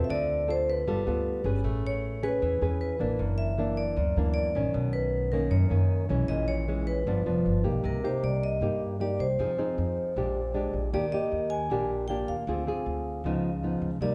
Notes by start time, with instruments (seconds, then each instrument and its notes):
Already playing: nylon-string guitar C4 F4 A4
0.04 vibraphone E5
0.09 upright bass D2, nylon-string guitar D3, vibraphone D5
0.48 nylon-string guitar C4 F4 A4, vibraphone C5
0.70 vibraphone B4
0.88 upright bass G1, nylon-string guitar G3 B3 F4 A4
1.07 upright bass D2, nylon-string guitar B3 F4 A4
1.44 upright bass G1, nylon-string guitar C#4 G#4 B4
1.64 upright bass A1, nylon-string guitar A3
1.87 vibraphone C#5
2.23 nylon-string guitar C#4 G#4 B4, vibraphone B4
2.42 upright bass E2, nylon-string guitar E3
2.61 upright bass E2, nylon-string guitar C#4 G#4 B4
2.81 vibraphone B4
2.99 upright bass A1, nylon-string guitar E3 A#3 D4
3.19 upright bass F#1, nylon-string guitar F#2
3.38 vibraphone E5
3.58 nylon-string guitar E3 A#3 D4
3.77 vibraphone D5
3.96 upright bass D2, nylon-string guitar F#2
4.16 upright bass D2, nylon-string guitar E3 A#3 D4
4.34 vibraphone D5
4.55 upright bass A1, nylon-string guitar D#3 C#4
4.74 upright bass B1, nylon-string guitar B2
4.93 vibraphone B4
5.32 nylon-string guitar D#3 A#3 C#4, vibraphone A#4
5.51 nylon-string guitar F#2, upright bass F#2, vibraphone C#5
5.70 upright bass F#2, nylon-string guitar D#3 A#3 C#4
6.09 upright bass B1, nylon-string guitar E3 G#3 C#4
6.28 upright bass A#1, nylon-string guitar A#2, vibraphone D#5
6.48 vibraphone C#5
6.68 nylon-string guitar E3 G#3 C#4
6.87 vibraphone B4
7.07 upright bass G1, nylon-string guitar G2 F3 B3 D4
7.26 upright bass F1, nylon-string guitar F3 B3 D4
7.46 upright bass G1
7.64 upright bass B1, nylon-string guitar A#3 D#4 G4
7.84 upright bass C2, nylon-string guitar C3, vibraphone A#4
8.04 nylon-string guitar A#3 D#4 G4, vibraphone C5
8.23 upright bass C2, vibraphone D5
8.44 vibraphone D#5
8.61 upright bass G2, nylon-string guitar G2 A#3 D#4 G4
9.00 nylon-string guitar A#3 D#4 G4, vibraphone D5
9.19 upright bass C2, vibraphone C5
9.39 upright bass F2, nylon-string guitar F3 C4 D#4 G#4
9.58 nylon-string guitar C4 D#4 G#4
9.78 upright bass F2
10.16 upright bass A#1, nylon-string guitar A#2 G#3 D4 G4
10.54 nylon-string guitar G#3 D4 G4
10.73 upright bass A#1
10.93 upright bass D#2, nylon-string guitar D#3 A#3 D4 G4, vibraphone D5
11.12 nylon-string guitar A#3 G4, vibraphone D#5
11.32 upright bass D#2
11.50 vibraphone G#5
11.70 upright bass A#1, nylon-string guitar A#2 A#3 D4 G4
12.08 nylon-string guitar A#3 D4 G4, vibraphone G5
12.28 upright bass D#2, vibraphone F5
12.47 upright bass D2, nylon-string guitar D3 C4 F4 G#4
12.67 nylon-string guitar C4 F4 G#4
12.86 upright bass D2
13.24 upright bass C#2, nylon-string guitar C#3 F3 B3 D#4
13.63 nylon-string guitar F3 B3 D#4
13.82 upright bass C#2
14.01 upright bass C2, nylon-string guitar C3 G3 A#3 D#4, vibraphone D5